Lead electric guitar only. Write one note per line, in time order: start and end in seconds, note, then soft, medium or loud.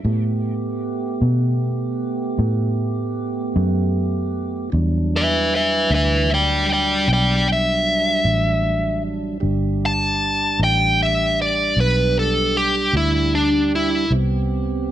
5.16 5.54 B4 medium
5.16 5.53 E5 medium
5.55 5.90 B4 medium
5.55 5.92 E5 medium
5.94 6.29 B4 medium
5.94 6.31 E5 medium
6.34 6.68 D5 medium
6.34 6.70 G5 medium
6.73 7.07 D5 medium
6.73 7.09 G5 medium
7.13 7.47 D5 medium
7.13 7.49 G5 medium
7.53 9.02 E5 medium
9.86 10.60 A5 medium
10.64 11.00 G5 medium
11.03 11.39 E5 medium
11.42 11.78 D5 medium
11.80 12.16 B4 medium
12.19 12.55 A4 medium
12.57 12.94 G4 medium
12.97 13.33 E4 medium
13.35 13.72 D4 medium
13.75 14.11 E4 medium